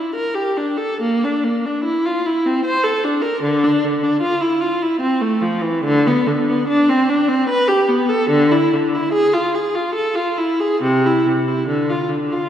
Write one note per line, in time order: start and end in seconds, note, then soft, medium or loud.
0.00 0.14 E4 medium
0.15 0.35 A#4 medium
0.34 0.56 G4 medium
0.57 0.78 D4 medium
0.77 0.99 A4 medium
1.01 1.21 A#3 medium
1.24 1.43 D4 medium
1.44 1.64 A#3 medium
1.66 1.84 D4 medium
1.84 2.03 E4 medium
2.05 2.24 F4 medium
2.26 2.45 E4 medium
2.46 2.65 C4 medium
2.65 2.84 C5 medium
2.84 3.03 A4 medium
3.04 3.23 D4 medium
3.22 3.42 A#4 medium
3.42 3.62 D3 medium
3.64 3.83 D4 medium
3.84 4.03 D3 medium
4.03 4.22 D4 medium
4.21 4.41 F4 medium
4.41 4.61 E4 medium
4.61 4.81 F4 medium
4.82 5.02 E4 medium
5.00 5.21 C4 medium
5.21 5.42 A3 medium
5.41 5.63 F3 medium
5.62 5.84 E3 medium
5.84 6.06 D3 loud
6.07 6.28 B3 medium
6.27 6.48 D3 medium
6.49 6.69 B3 medium
6.68 6.87 D4 medium
6.89 7.09 C4 medium
7.09 7.29 D4 medium
7.28 7.48 C4 medium
7.49 7.68 B4 medium
7.68 7.88 G4 medium
7.89 8.09 B3 medium
8.09 8.30 A4 medium
8.29 8.50 D3 loud
8.51 8.71 E4 medium
8.73 8.93 D3 medium
8.95 9.13 E4 medium
9.13 9.32 G#4 medium
9.33 9.53 F4 medium
9.55 9.74 G#4 medium
9.75 9.95 F4 medium
9.95 10.14 A4 medium
10.15 10.36 F4 medium
10.38 10.59 E4 medium
10.60 10.81 G#4 medium
10.82 11.03 C3 medium
11.06 11.26 E4 medium
11.26 11.47 C3 medium
11.48 11.68 E4 medium
11.68 11.88 D3 medium
11.90 12.10 F4 medium
12.09 12.30 D3 medium
12.32 12.49 F4 medium